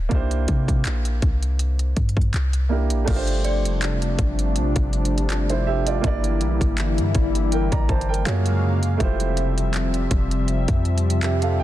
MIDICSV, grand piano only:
0, 0, Header, 1, 2, 480
1, 0, Start_track
1, 0, Tempo, 740741
1, 75, Time_signature, 4, 2, 24, 8
1, 7539, End_track
2, 0, Start_track
2, 0, Title_t, "Grand piano"
2, 0, Program_c, 0, 0
2, 0, Control_c, 0, 64, 127
2, 58, Note_on_c, 0, 58, 70
2, 66, Note_on_c, 0, 62, 64
2, 76, Note_on_c, 0, 63, 51
2, 84, Control_c, 0, 64, 0
2, 85, Note_on_c, 0, 67, 70
2, 95, Note_on_c, 0, 72, 82
2, 117, Note_on_c, 0, 64, 65
2, 121, Note_off_c, 0, 63, 0
2, 196, Control_c, 0, 64, 127
2, 1720, Note_off_c, 0, 58, 0
2, 1724, Note_off_c, 0, 62, 0
2, 1734, Note_off_c, 0, 67, 0
2, 1738, Note_off_c, 0, 72, 0
2, 1744, Note_off_c, 0, 64, 0
2, 1745, Note_on_c, 0, 58, 56
2, 1748, Note_on_c, 0, 62, 49
2, 1753, Note_on_c, 0, 64, 50
2, 1759, Note_on_c, 0, 67, 51
2, 1764, Note_on_c, 0, 70, 62
2, 1972, Note_off_c, 0, 62, 0
2, 1973, Note_on_c, 0, 57, 75
2, 1982, Note_on_c, 0, 62, 69
2, 1989, Note_off_c, 0, 58, 0
2, 1991, Note_off_c, 0, 67, 0
2, 1991, Note_on_c, 0, 65, 65
2, 1994, Note_off_c, 0, 64, 0
2, 1999, Note_off_c, 0, 70, 0
2, 2000, Note_on_c, 0, 67, 66
2, 2003, Control_c, 0, 64, 0
2, 2009, Note_on_c, 0, 70, 68
2, 2047, Note_off_c, 0, 70, 0
2, 2050, Note_on_c, 0, 72, 83
2, 2102, Control_c, 0, 64, 127
2, 3168, Note_off_c, 0, 65, 0
2, 3173, Note_off_c, 0, 67, 0
2, 3199, Note_off_c, 0, 72, 0
2, 3564, Note_on_c, 0, 72, 64
2, 3568, Note_on_c, 0, 64, 52
2, 3669, Note_off_c, 0, 72, 0
2, 3671, Note_off_c, 0, 64, 0
2, 3674, Note_on_c, 0, 76, 74
2, 3678, Note_on_c, 0, 67, 62
2, 3797, Note_off_c, 0, 76, 0
2, 3799, Note_off_c, 0, 67, 0
2, 3803, Note_on_c, 0, 74, 63
2, 3807, Note_on_c, 0, 65, 55
2, 3878, Note_off_c, 0, 57, 0
2, 3882, Note_off_c, 0, 62, 0
2, 3897, Note_on_c, 0, 58, 72
2, 3906, Note_on_c, 0, 62, 68
2, 3915, Note_on_c, 0, 64, 69
2, 3922, Control_c, 0, 64, 0
2, 3923, Note_off_c, 0, 74, 0
2, 3925, Note_on_c, 0, 67, 66
2, 3933, Note_on_c, 0, 74, 85
2, 4019, Control_c, 0, 64, 127
2, 4033, Note_off_c, 0, 65, 0
2, 4864, Note_off_c, 0, 74, 0
2, 4874, Note_on_c, 0, 79, 66
2, 4878, Note_on_c, 0, 70, 55
2, 4997, Note_off_c, 0, 79, 0
2, 4999, Note_off_c, 0, 70, 0
2, 5001, Note_on_c, 0, 82, 69
2, 5005, Note_on_c, 0, 74, 59
2, 5107, Note_off_c, 0, 82, 0
2, 5109, Note_off_c, 0, 74, 0
2, 5111, Note_on_c, 0, 81, 72
2, 5115, Note_on_c, 0, 72, 60
2, 5236, Note_off_c, 0, 81, 0
2, 5238, Note_off_c, 0, 72, 0
2, 5242, Note_on_c, 0, 79, 65
2, 5246, Note_on_c, 0, 70, 53
2, 5320, Note_off_c, 0, 58, 0
2, 5324, Note_off_c, 0, 62, 0
2, 5329, Note_off_c, 0, 64, 0
2, 5333, Note_off_c, 0, 67, 0
2, 5345, Note_on_c, 0, 57, 60
2, 5349, Note_on_c, 0, 65, 68
2, 5354, Note_on_c, 0, 66, 71
2, 5358, Note_on_c, 0, 68, 69
2, 5362, Note_on_c, 0, 73, 85
2, 5364, Control_c, 0, 64, 0
2, 5386, Note_on_c, 0, 58, 72
2, 5395, Note_off_c, 0, 57, 0
2, 5471, Note_off_c, 0, 79, 0
2, 5473, Note_off_c, 0, 70, 0
2, 5488, Control_c, 0, 64, 127
2, 5815, Note_on_c, 0, 57, 76
2, 5823, Note_on_c, 0, 64, 69
2, 5824, Note_off_c, 0, 65, 0
2, 5833, Note_on_c, 0, 65, 66
2, 5834, Note_off_c, 0, 66, 0
2, 5836, Note_off_c, 0, 68, 0
2, 5838, Note_off_c, 0, 73, 0
2, 5842, Note_on_c, 0, 67, 66
2, 5843, Control_c, 0, 64, 0
2, 5850, Note_off_c, 0, 58, 0
2, 5850, Note_on_c, 0, 72, 83
2, 5941, Control_c, 0, 64, 127
2, 7252, Note_off_c, 0, 67, 0
2, 7256, Note_off_c, 0, 72, 0
2, 7273, Note_on_c, 0, 76, 66
2, 7277, Note_on_c, 0, 67, 53
2, 7397, Note_off_c, 0, 76, 0
2, 7399, Note_off_c, 0, 67, 0
2, 7403, Note_on_c, 0, 77, 69
2, 7405, Note_on_c, 0, 69, 58
2, 7479, Note_off_c, 0, 57, 0
2, 7483, Note_off_c, 0, 64, 0
2, 7488, Note_off_c, 0, 65, 0
2, 7508, Note_off_c, 0, 77, 0
2, 7510, Note_off_c, 0, 69, 0
2, 7515, Note_on_c, 0, 79, 73
2, 7539, Note_off_c, 0, 79, 0
2, 7539, End_track
0, 0, End_of_file